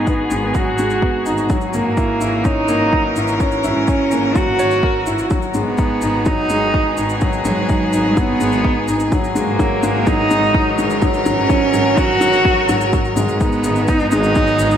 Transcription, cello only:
0.00 0.57 B3 medium
0.56 1.50 F#4 loud
1.74 2.46 A#3 medium
2.45 3.40 D#4 loud
3.65 4.37 C#4 medium
4.36 5.31 F#4 loud
5.55 6.29 B3 medium
6.27 7.22 D#4 loud
7.45 8.19 F#3 medium
8.17 9.12 B3 loud
9.36 10.09 A#3 medium
10.07 11.03 D#4 loud
11.26 11.99 C#4 loud
11.98 12.93 F#4 loud
13.42 13.90 B3 loud
13.89 14.12 D#4 loud
14.13 14.77 D#4 loud

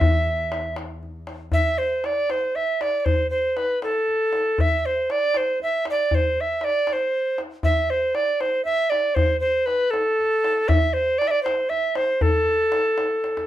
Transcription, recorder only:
0.00 0.76 E5 medium
1.53 1.80 E5 medium
1.78 2.07 C5 medium
2.05 2.32 D5 medium
2.31 2.57 C5 medium
2.56 2.83 E5 medium
2.82 3.00 D5 medium
3.00 3.06 D5 medium
3.05 3.30 C5 medium
3.30 3.58 C5 medium
3.57 3.82 B4 medium
3.83 4.62 A4 medium
4.61 4.87 E5 medium
4.86 5.13 C5 medium
5.11 5.38 D5 medium
5.37 5.62 C5 medium
5.63 5.86 E5 medium
5.90 6.16 D5 medium
6.15 6.42 C5 medium
6.41 6.66 E5 medium
6.64 6.94 D5 medium
6.93 7.40 C5 medium
7.64 7.92 E5 medium
7.90 8.16 C5 medium
8.15 8.42 D5 medium
8.40 8.64 C5 medium
8.65 8.91 E5 loud
8.90 9.16 D5 medium
9.15 9.39 C5 medium
9.40 9.67 C5 medium
9.66 9.92 B4 medium
9.91 10.70 A4 medium
10.68 10.95 E5 loud
10.93 11.20 C5 medium
11.18 11.29 D5 medium
11.28 11.42 D5 medium
11.28 11.32 E5 medium
11.43 11.71 C5 medium
11.70 11.97 E5 loud
11.96 12.23 C5 medium
12.22 13.47 A4 medium

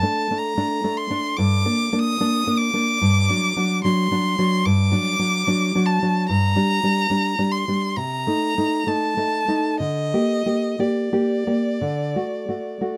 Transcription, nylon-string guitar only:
0.02 0.27 A3 medium
0.02 0.27 D4 medium
0.31 0.55 A3 medium
0.31 0.55 D4 medium
0.57 0.81 A3 medium
0.57 0.81 D4 medium
0.84 1.08 A3 medium
0.84 1.08 D4 medium
1.10 1.35 A3 medium
1.10 1.35 D4 medium
1.38 1.65 G2 medium
1.65 1.90 A#3 medium
1.65 1.90 D4 medium
1.92 2.16 A#3 medium
1.92 2.17 D4 medium
2.20 2.44 A#3 medium
2.20 2.44 D4 medium
2.47 2.71 A#3 medium
2.47 2.71 D4 medium
2.73 2.98 A#3 medium
2.73 2.98 D4 medium
3.01 3.28 G2 medium
3.30 3.54 F#3 medium
3.30 3.54 D4 medium
3.56 3.81 F#3 medium
3.56 3.81 D4 medium
3.84 4.09 F#3 medium
3.84 4.09 D4 medium
4.11 4.36 F#3 medium
4.11 4.36 D4 medium
4.39 4.63 F#3 medium
4.39 4.63 D4 medium
4.66 4.92 G2 medium
4.92 5.16 F#3 medium
4.92 5.17 D4 medium
5.19 5.44 F#3 medium
5.19 5.44 D4 medium
5.47 5.71 F#3 medium
5.47 5.71 D4 medium
5.75 5.99 F#3 medium
5.75 5.99 D4 medium
6.02 6.26 F#3 medium
6.02 6.26 D4 medium
6.29 6.55 G2 medium
6.56 6.80 G3 medium
6.56 6.80 D4 medium
6.83 7.08 G3 medium
6.83 7.08 D4 medium
7.10 7.35 G3 medium
7.10 7.36 D4 medium
7.39 7.64 G3 medium
7.39 7.64 D4 medium
7.68 7.94 G3 medium
7.68 7.94 D4 medium
7.97 8.26 C3 medium
8.27 8.54 A3 medium
8.27 8.54 D#4 medium
8.58 8.85 A3 soft
8.58 8.84 D#4 medium
8.87 9.14 A3 soft
8.87 9.14 D#4 medium
9.17 9.45 A3 medium
9.17 9.46 D#4 medium
9.48 9.77 A3 soft
9.48 9.78 D#4 medium
9.80 10.12 D3 medium
10.14 10.43 A#3 soft
10.14 10.44 G4 medium
10.46 10.76 A#3 soft
10.46 10.76 G4 medium
10.79 11.09 A#3 medium
10.79 11.10 G4 medium
11.12 11.44 A#3 medium
11.12 11.44 G4 medium
11.47 11.78 A#3 medium
11.47 11.78 G4 medium
11.81 12.14 D3 medium
12.16 12.45 A3 soft
12.16 12.45 F#4 medium
12.49 12.78 A3 soft
12.49 12.78 F#4 medium
12.81 12.97 A3 soft
12.81 12.97 F#4 medium

